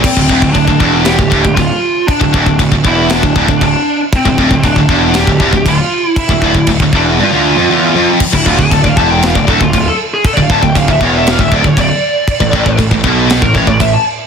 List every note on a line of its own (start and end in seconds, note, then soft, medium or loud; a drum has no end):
0.04 0.52 C4 medium
0.04 kick loud
0.04 crash loud
0.04 crash medium
0.17 0.29 D1 medium
0.17 0.28 D2 medium
0.17 kick loud
0.29 0.42 D1 medium
0.29 0.41 D2 loud
0.29 kick medium
0.42 0.54 D1 medium
0.42 0.53 D2 medium
0.42 kick medium
0.52 0.67 D1 medium
0.52 0.66 D2 medium
0.52 1.07 D4 loud
0.52 kick medium
0.52 crash medium
0.68 0.79 D1 medium
0.68 0.80 D2 medium
0.68 kick medium
0.80 1.16 E1 loud
0.80 1.18 E2 loud
0.80 kick medium
1.04 1.54 G4 loud
1.04 snare loud
1.04 crash medium
1.18 1.31 D1 medium
1.18 1.29 D2 medium
1.18 kick medium
1.30 1.44 D1 loud
1.30 1.42 D2 medium
1.30 kick medium
1.44 1.57 D1 medium
1.44 1.55 D2 medium
1.44 kick medium
1.55 1.70 D1 medium
1.55 1.70 D2 medium
1.55 2.09 F4 loud
1.55 kick medium
1.55 crash medium
2.07 2.56 D4 medium
2.07 kick loud
2.07 crash medium
2.20 2.33 D1 medium
2.20 2.32 D2 medium
2.20 kick medium
2.33 2.46 D1 medium
2.33 2.45 D2 loud
2.33 kick loud
2.46 2.59 D1 medium
2.46 2.59 D2 medium
2.46 kick loud
2.59 2.71 D1 medium
2.59 2.70 D2 medium
2.59 kick medium
2.59 crash medium
2.71 2.84 D1 medium
2.71 2.84 D2 medium
2.71 kick medium
2.84 3.21 E1 loud
2.84 3.23 E2 loud
2.84 3.13 E4 loud
2.84 kick medium
3.10 3.62 D4 loud
3.10 snare loud
3.10 crash medium
3.23 3.36 D1 medium
3.23 3.35 D2 medium
3.23 kick medium
3.36 3.47 D1 loud
3.36 3.49 D2 loud
3.36 kick medium
3.48 3.61 D1 medium
3.48 3.60 D2 medium
3.48 kick medium
3.61 3.74 D1 medium
3.61 3.75 D2 medium
3.61 3.98 D4 medium
3.61 kick medium
3.61 crash medium
4.13 4.62 C4 loud
4.13 kick loud
4.13 crash medium
4.25 4.37 D1 medium
4.25 4.37 D2 medium
4.25 kick medium
4.38 4.50 D1 medium
4.38 4.51 D2 loud
4.38 kick medium
4.50 4.62 D1 medium
4.50 4.63 D2 medium
4.50 kick loud
4.63 4.75 D1 medium
4.63 4.77 D2 medium
4.63 5.17 D4 loud
4.63 kick medium
4.63 crash medium
4.76 4.88 D1 medium
4.76 4.90 D2 medium
4.76 kick medium
4.88 5.25 E1 loud
4.88 5.28 E2 loud
4.88 kick medium
5.14 5.63 G4 loud
5.14 snare loud
5.14 crash medium
5.27 5.39 D1 medium
5.27 5.40 D2 medium
5.27 kick medium
5.40 5.52 D1 loud
5.40 5.53 D2 loud
5.40 kick medium
5.53 5.65 D1 medium
5.53 5.66 D2 medium
5.53 kick medium
5.66 5.78 D1 medium
5.66 5.80 D2 medium
5.66 6.06 F4 loud
5.66 kick loud
5.66 crash medium
6.06 6.18 E4 loud
6.16 6.66 E4 loud
6.16 kick loud
6.16 crash medium
6.29 6.41 D1 medium
6.29 6.43 D2 medium
6.29 kick loud
6.42 6.54 D1 medium
6.42 6.55 D2 loud
6.42 kick medium
6.54 6.67 D1 medium
6.54 6.68 D2 medium
6.54 kick medium
6.67 6.79 D1 medium
6.67 6.81 D2 medium
6.67 kick medium
6.67 crash medium
6.80 6.92 D1 medium
6.80 6.95 D2 medium
6.80 kick medium
6.93 7.17 E1 medium
6.93 7.19 E2 loud
6.93 7.03 D4 loud
6.93 kick medium
7.20 7.32 G2 loud
7.20 7.71 F4 loud
7.33 7.57 D2 loud
7.58 7.70 F2 medium
7.71 7.95 E2 loud
7.71 8.07 F4 medium
7.96 8.21 F2 loud
8.20 kick loud
8.20 crash loud
8.20 crash medium
8.33 8.45 D1 medium
8.33 8.45 D2 medium
8.33 8.48 E4 medium
8.33 kick loud
8.46 8.58 D1 medium
8.46 8.58 D2 loud
8.46 8.60 F4 medium
8.46 kick loud
8.58 8.71 D1 medium
8.58 8.71 D2 medium
8.58 8.71 G#4 medium
8.58 kick medium
8.71 8.83 D1 medium
8.71 8.83 D2 medium
8.71 8.80 A4 medium
8.71 kick medium
8.71 crash medium
8.82 8.96 D1 medium
8.82 8.97 D2 medium
8.82 8.90 D5 medium
8.82 kick medium
8.89 8.97 F5 medium
8.97 9.33 E1 loud
8.97 9.35 E2 loud
8.97 9.10 A5 loud
8.97 kick medium
9.10 9.23 G5 medium
9.22 9.35 F5 loud
9.22 snare loud
9.22 crash medium
9.35 9.47 D1 medium
9.35 9.47 D2 medium
9.35 9.48 D5 loud
9.35 kick medium
9.48 9.60 D1 loud
9.48 9.61 D2 loud
9.48 9.61 A4 loud
9.48 kick medium
9.61 9.73 D1 medium
9.61 9.73 D2 medium
9.61 9.72 F4 medium
9.61 kick medium
9.73 9.86 D1 medium
9.73 9.87 D2 medium
9.73 9.86 F4 medium
9.73 kick loud
9.73 crash medium
9.88 9.95 A4 medium
10.14 10.26 G#4 medium
10.25 10.34 A4 medium
10.25 kick loud
10.25 crash medium
10.33 10.49 D1 medium
10.33 10.42 D5 medium
10.33 kick medium
10.38 10.49 D2 medium
10.42 10.50 F5 medium
10.49 10.62 D1 medium
10.49 10.61 D2 loud
10.49 10.63 A5 loud
10.49 kick medium
10.62 10.75 D1 medium
10.62 10.75 D2 medium
10.62 10.75 G5 loud
10.62 kick medium
10.75 10.88 D1 medium
10.75 10.87 D2 medium
10.75 10.89 F5 medium
10.75 kick medium
10.75 crash medium
10.88 11.00 D1 medium
10.88 11.01 D2 medium
10.88 11.02 E5 medium
10.88 kick medium
11.01 11.37 E1 loud
11.01 11.39 E2 loud
11.01 11.15 C#5 medium
11.01 kick medium
11.15 11.29 E5 medium
11.27 11.41 F5 loud
11.27 snare loud
11.27 crash medium
11.39 11.51 D1 medium
11.39 11.50 D2 medium
11.39 11.55 E5 loud
11.39 kick loud
11.52 11.63 D1 loud
11.52 11.64 D2 loud
11.52 11.67 D5 loud
11.52 kick loud
11.64 11.76 D1 medium
11.64 11.76 D2 medium
11.64 11.79 C#5 medium
11.64 kick medium
11.77 11.89 D1 medium
11.77 11.90 D2 medium
11.77 12.77 D5 medium
11.77 kick loud
11.77 crash medium
12.28 kick loud
12.28 crash medium
12.40 12.52 A1 medium
12.40 12.51 A2 medium
12.40 kick medium
12.52 12.65 A1 loud
12.52 12.63 A2 loud
12.52 kick loud
12.65 12.78 A1 medium
12.65 12.76 A2 medium
12.65 kick medium
12.78 12.90 A1 medium
12.78 12.90 A2 medium
12.78 kick medium
12.78 crash medium
12.91 13.03 A1 medium
12.91 13.03 A2 medium
12.91 kick medium
13.04 13.40 B1 medium
13.04 13.42 B2 loud
13.04 kick loud
13.30 snare loud
13.30 crash medium
13.42 13.54 A1 medium
13.42 13.53 A2 medium
13.42 13.55 A#4 medium
13.42 kick medium
13.54 13.67 A1 loud
13.54 13.66 A2 loud
13.54 13.67 C#5 loud
13.54 kick loud
13.67 13.79 A1 medium
13.67 13.79 A2 medium
13.67 13.80 D5 medium
13.67 kick medium
13.80 13.92 A1 medium
13.80 13.93 A2 medium
13.80 13.93 E5 medium
13.80 kick medium
13.80 crash medium
13.93 14.01 A5 medium